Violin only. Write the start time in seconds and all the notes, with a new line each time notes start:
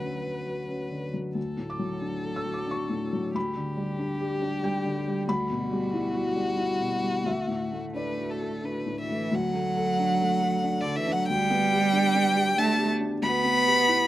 Already playing: B4
1.37 A4
3.35 G4
5.28 F#4
7.95 B4
8.30 A4
8.65 B4
8.99 E5
9.35 F#5
10.81 D5
10.96 E5
11.12 F#5
11.28 G5
12.58 A5
13.22 B5